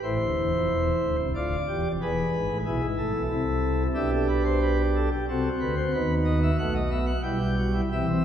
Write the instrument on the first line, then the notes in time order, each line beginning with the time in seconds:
pipe organ
0.02 A1 A2 E4 C5
0.19 D1 D2
0.36 E1 E2
0.54 F1 F2
0.69 E1 E2
1.01 D1 D2
1.18 C1 C2
1.35 D1 D2 F4 D5
1.68 E1 E2 G4
1.84 F1 F2
2.01 E1 E2 G#4 B4
2.33 G#1 G#2
2.49 A1 A2
2.66 B1 B2 E4 G#4
2.82 G#1 G#2
2.97 A1 A2 A4
3.13 B1 B2
3.30 C2 C3 E4
3.94 B1 B2 D4 G4 E5
4.13 A4
4.28 B4
4.44 C5
4.61 B4
4.95 A4
5.11 G4
5.28 C2 C3 C4 F#4 A4
5.60 D2 D3 B4
5.77 C5
5.94 D#2 D#3 B3 B4
6.25 D#5
6.43 E5
6.59 B1 B2 A3 F#5
6.75 D#5
6.91 B3 E5
7.06 F#5
7.23 B1 B2 G3 E4 G5
7.40 G4
7.57 F#4
7.74 E4
7.92 C2 C3 E3 G4 E5
8.07 C4